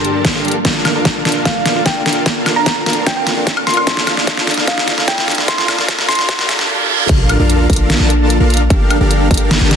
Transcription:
Already playing: ambient pad G2 F3 A#3 A5, supersaw synth D4 G4 A4 A#4 A5, synth pluck C6, riser
0.05 closed hi-hat
0.25 kick, snare, closed hi-hat
0.35 supersaw synth D4 G4 A4 A#4 F5
0.45 closed hi-hat
0.48 closed hi-hat
0.51 closed hi-hat
0.65 ambient pad A#2 D4, supersaw synth D4 F4 A4 A#4 F5, kick, snare, closed hi-hat
0.85 snare, closed hi-hat, high woodblock
0.95 supersaw synth D4 F4 A4 A#4 F5
1.05 kick, snare, closed hi-hat
1.25 supersaw synth D4 F4 A4 A#4 F5, snare, closed hi-hat
1.29 closed hi-hat
1.32 closed hi-hat
1.45 supersaw synth D4, synth pluck F5, kick, snare, closed hi-hat
1.66 snare, closed hi-hat
1.76 supersaw synth D4 F4 A4 A#4 F5
1.86 synth pluck G5, kick, snare, closed hi-hat
2.06 supersaw synth D4 F4 A4 A#4 F5, snare, closed hi-hat
2.09 closed hi-hat
2.13 closed hi-hat
2.26 ambient pad G2 A#3, supersaw synth F4 F5, kick, snare, closed hi-hat
2.46 snare, closed hi-hat, high woodblock
2.56 supersaw synth D4 F4 A4 A#4 F5, synth pluck A#5
2.66 kick, snare, closed hi-hat
2.86 supersaw synth D4 F4 A4 A#4 F5, snare, closed hi-hat
2.90 closed hi-hat
2.93 closed hi-hat
3.06 supersaw synth D4 F4 A4 F5, synth pluck G5, kick, snare, closed hi-hat
3.17 synth pluck G5
3.27 snare, closed hi-hat
3.37 supersaw synth D4 F4 A4 A#4 F5
3.47 kick, snare, closed hi-hat
3.57 high woodblock
3.67 supersaw synth D4 F4 A4 A#4 F5, synth pluck C6, snare, closed hi-hat
3.70 closed hi-hat
3.74 synth pluck C6, closed hi-hat, high woodblock
3.87 ambient pad D2 D3 C4 F4, supersaw synth D4 F4 A4 F5, kick, snare, closed hi-hat
3.97 snare
4.07 snare, closed hi-hat, high woodblock
4.17 supersaw synth D4 F4 A4 F5, snare
4.27 kick, snare, closed hi-hat
4.37 snare
4.47 snare, closed hi-hat
4.51 closed hi-hat
4.54 supersaw synth D4 F4 A4 F5, snare, closed hi-hat
4.67 synth pluck F5, kick, snare, closed hi-hat
4.78 snare
4.88 snare, closed hi-hat
4.98 supersaw synth D4 F4 A4 F5, snare
5.08 supersaw synth D4 F4 A4, synth pluck G5, kick, snare, closed hi-hat
5.18 snare
5.28 snare, closed hi-hat
5.31 closed hi-hat
5.35 supersaw synth D4 F4 A4 F5, snare, closed hi-hat
5.48 ambient pad G2 F3 A#3 A4, supersaw synth D4 A4 A#4, synth pluck C6, kick, snare, closed hi-hat
5.58 synth pluck C6, snare
5.68 supersaw synth D4 F4 A4 A#4 F5, snare, closed hi-hat, high woodblock
5.79 snare
5.88 supersaw synth D4 F4 A4 A#4 F5, kick, snare, closed hi-hat
5.99 snare
6.08 supersaw synth D4 F4 A4 A#4 F5, synth pluck C6, snare, closed hi-hat
6.12 closed hi-hat
6.15 snare, closed hi-hat
6.29 supersaw synth D4 F4 A4 A#4 F5, kick, snare, closed hi-hat, reverse cymbal
6.39 snare
6.49 supersaw synth D4 F4 A4 A#4 F5, snare, closed hi-hat
6.59 snare
6.69 supersaw synth D4 F4 A4 A#4 F5
6.89 supersaw synth D4 F4 A4 A#4 F5
7.09 808-style bass A#1, ambient pad F3 A#3 D4, supersaw synth D4 F4 A4, kick, closed hi-hat, crash, sub drop
7.29 closed hi-hat, high woodblock
7.39 808-style bass A#1, supersaw synth D4 F4 A4 A#4 F5
7.50 closed hi-hat
7.70 808-style bass A#1, supersaw synth D4 A#4, kick, closed hi-hat
7.73 closed hi-hat
7.76 closed hi-hat
7.90 snare, closed hi-hat
8.00 808-style bass A#1, supersaw synth D4 F4 A4 A#4 A5
8.10 closed hi-hat
8.30 closed hi-hat
8.40 808-style bass A#1, supersaw synth D4 F4 A4 A#4 F5
8.50 closed hi-hat
8.54 closed hi-hat
8.57 closed hi-hat
8.70 808-style bass G1, ambient pad G3 A#3 F4 A5, supersaw synth D4 G4 A4 A#4 F5, kick, closed hi-hat
8.90 closed hi-hat, high woodblock
9.01 808-style bass G1, supersaw synth D4 G4 A4 A#4 F5
9.11 closed hi-hat
9.31 808-style bass G1, supersaw synth D4 G4 A4 A#4, kick, closed hi-hat
9.34 closed hi-hat
9.37 closed hi-hat
9.51 snare, closed hi-hat
9.61 808-style bass G1, supersaw synth D4 G4 A4 A#4 A5
9.71 snare, closed hi-hat

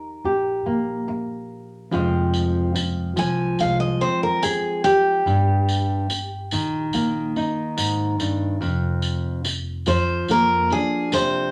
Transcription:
Already playing: upright bass D#2, nylon-string guitar D#4 G4, steel-string acoustic guitar A#4
0.24 upright bass A#1, nylon-string guitar G4
0.66 upright bass A#1, nylon-string guitar A#3
1.08 muted nylon-string guitar stroke
1.91 upright bass F1, nylon-string guitar F2 F3 G#3 C4 F4, tambourine
2.34 tambourine
2.75 muted nylon-string guitar stroke, tambourine
3.16 upright bass C2, nylon-string guitar F3, steel-string acoustic guitar G#5, tambourine
3.59 upright bass C2, nylon-string guitar G#3, steel-string acoustic guitar F5, tambourine
3.80 steel-string acoustic guitar D#5
4.01 nylon-string guitar C4, steel-string acoustic guitar C5, tambourine
4.23 steel-string acoustic guitar A#4
4.42 steel-string acoustic guitar G#4, muted nylon-string guitar stroke, tambourine
4.84 steel-string acoustic guitar G4, tambourine
5.26 upright bass G1, nylon-string guitar G2, tambourine
5.69 tambourine
6.10 muted nylon-string guitar stroke, tambourine
6.51 upright bass A#1, nylon-string guitar D#3, tambourine
6.93 upright bass A#1, nylon-string guitar A#3, tambourine
7.36 nylon-string guitar D#4, tambourine
7.77 nylon-string guitar G#2, tambourine
8.19 nylon-string guitar G2, tambourine
8.61 upright bass F1, nylon-string guitar F2, tambourine
9.02 tambourine
9.45 muted nylon-string guitar stroke, tambourine
9.86 upright bass F2, nylon-string guitar F3, steel-string acoustic guitar C5, tambourine
10.28 upright bass F2, nylon-string guitar A#3, steel-string acoustic guitar A#4, tambourine
10.70 nylon-string guitar D4, steel-string acoustic guitar G#4, tambourine
11.12 nylon-string guitar C3, steel-string acoustic guitar C5, tambourine

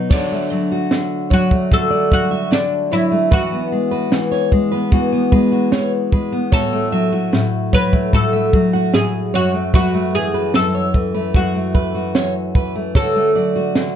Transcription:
Already playing: steel-string acoustic guitar B2 F#3 B3 D#4 F#4
0.10 steel-string acoustic guitar D3 F#4 C#5, oud D4, kick, crash
0.32 steel-string acoustic guitar A3
0.50 steel-string acoustic guitar F#3 D5, shaker
0.71 steel-string acoustic guitar F#4, shaker
0.91 steel-string acoustic guitar D3, snare, shaker
1.30 steel-string acoustic guitar F#3 C#5, oud F#4, kick, shaker
1.51 steel-string acoustic guitar A3, kick
1.72 steel-string acoustic guitar D3 F#4, oud A4, kick, shaker
1.91 steel-string acoustic guitar A3 D5
2.12 steel-string acoustic guitar F#3, oud F#4, kick, shaker
2.31 steel-string acoustic guitar F#4 E5
2.51 steel-string acoustic guitar D3 D5, oud D4, snare, shaker
2.92 steel-string acoustic guitar F#3 C#5, oud E4, shaker
3.12 steel-string acoustic guitar A3, shaker
3.31 steel-string acoustic guitar E3 F#4 B4, oud F#4, kick, shaker
3.52 steel-string acoustic guitar B3
3.72 steel-string acoustic guitar G#3, shaker
3.91 steel-string acoustic guitar F#4 B4, shaker
4.12 steel-string acoustic guitar E3, snare, shaker
4.32 steel-string acoustic guitar C#5, snare
4.52 steel-string acoustic guitar G#3, kick, shaker
4.72 steel-string acoustic guitar B3 B4, shaker
4.92 steel-string acoustic guitar E3 F#4, kick, shaker
5.12 steel-string acoustic guitar B3
5.32 steel-string acoustic guitar G#3 B4, kick, shaker
5.52 steel-string acoustic guitar F#4, shaker
5.71 steel-string acoustic guitar E3 C#5, snare, shaker
6.12 steel-string acoustic guitar G#3 B4, kick, shaker
6.32 steel-string acoustic guitar B3
6.52 steel-string acoustic guitar A2 F#4 C#5, oud A4, kick, shaker
6.73 steel-string acoustic guitar A3
6.92 steel-string acoustic guitar F#3 E5, shaker
7.12 steel-string acoustic guitar F#4
7.33 steel-string acoustic guitar A2, snare, shaker
7.73 steel-string acoustic guitar F#3 C#5, oud B4, kick, shaker
7.93 steel-string acoustic guitar A3, kick
8.13 steel-string acoustic guitar A2 F#4, oud A4, kick, shaker
8.33 steel-string acoustic guitar A3 E5
8.53 steel-string acoustic guitar F#3, kick, shaker
8.73 steel-string acoustic guitar F#4 F#5, shaker
8.93 steel-string acoustic guitar A2 E5, oud G#4, snare, shaker
9.34 steel-string acoustic guitar F#2 C#5, oud F#4, shaker
9.54 steel-string acoustic guitar A3, shaker
9.74 steel-string acoustic guitar F#2 F#4 B4, oud F#4, kick, shaker
9.94 steel-string acoustic guitar A3
10.14 steel-string acoustic guitar E3, oud G#4, shaker
10.34 steel-string acoustic guitar F#4 B4, shaker
10.54 steel-string acoustic guitar F#2, oud A4, snare, shaker
10.75 steel-string acoustic guitar C#5
10.94 steel-string acoustic guitar E3, kick, shaker
11.15 steel-string acoustic guitar A3 B4, shaker
11.34 steel-string acoustic guitar F#2 F#4, oud F#4, kick, shaker
11.55 steel-string acoustic guitar A3
11.75 steel-string acoustic guitar E3 B4, kick, shaker
11.95 steel-string acoustic guitar F#4, shaker
12.14 steel-string acoustic guitar F#2 C#5, snare, shaker
12.55 steel-string acoustic guitar E3 B4, kick, shaker
12.75 steel-string acoustic guitar A3, shaker
12.95 steel-string acoustic guitar D3 F#4 C#5, oud A4, kick, shaker
13.16 steel-string acoustic guitar A3
13.35 steel-string acoustic guitar F#3 D5, shaker
13.55 steel-string acoustic guitar F#4, shaker
13.75 steel-string acoustic guitar D3, snare, shaker

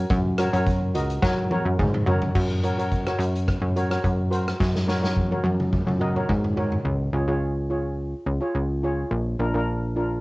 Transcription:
Already playing: steel pan F#4 A#4 C#5
0.10 analog synth bass F#2, kick, closed hi-hat
0.38 steel pan F#4 A#4 C#5, cross-stick, closed hi-hat
0.53 analog synth bass F#2, steel pan F#4 A#4 C#5, closed hi-hat
0.67 kick, closed hi-hat
0.94 analog synth bass C#2, steel pan F#4 A#4 D#5, closed hi-hat
1.10 closed hi-hat
1.22 analog synth bass F#3, steel pan F#4 A#4 C#5, kick, snare
1.51 steel pan F#4 A#4 C#5, high tom
1.65 analog synth bass F#2
1.79 analog synth bass G#2, kick, mid tom
1.94 mid tom
2.06 analog synth bass F#2, steel pan F#4 A#4 C#5, floor tom
2.22 floor tom
2.35 analog synth bass F#2, kick, crash
2.63 steel pan F#4 A#4 C#5, closed hi-hat
2.78 steel pan F#4 A#4 C#5, closed hi-hat
2.92 kick, closed hi-hat
3.07 steel pan F#4 A#4 C#5, cross-stick
3.19 analog synth bass F#2, closed hi-hat
3.36 closed hi-hat
3.48 kick, cross-stick, closed hi-hat
3.62 analog synth bass F#2
3.76 steel pan F#4 A#4 C#5, closed hi-hat
3.90 steel pan F#4 A#4 C#5, cross-stick, closed hi-hat
4.04 analog synth bass F#2, kick, closed hi-hat
4.31 steel pan F#4 A#4 C5, closed hi-hat
4.48 cross-stick, closed hi-hat
4.60 analog synth bass F#2, kick, snare
4.75 snare
4.87 steel pan F#4 A#4 C#5, snare
5.02 steel pan F#4 A#4 C#5, snare
5.17 kick, high tom
5.31 steel pan F#4 A#4 C#5, high tom
5.44 analog synth bass F#2, high tom
5.60 mid tom
5.73 kick, mid tom
5.87 analog synth bass F#2, mid tom
6.00 steel pan F#4 A#4 D#5, mid tom
6.16 steel pan F#4 A#4 C#5, mid tom
6.29 analog synth bass G#2, kick, mid tom
6.44 floor tom
6.56 steel pan F#4 A#4 C#5, floor tom
6.72 floor tom
6.85 analog synth bass C#2
7.13 analog synth bass C#2, steel pan F4 G#4 C#5
7.28 analog synth bass C#2, steel pan F4 G#4 C#5
7.70 steel pan F4 G#4 C#5
8.26 analog synth bass C#2
8.41 steel pan F4 G#4 C#5
8.55 analog synth bass C#2
8.83 steel pan F4 G#4 C#5
9.11 analog synth bass A#1
9.39 analog synth bass A#1, steel pan D4 F4 A#4
9.54 analog synth bass A#1, steel pan D4 F4 A#4
9.96 steel pan D4 F4 A#4

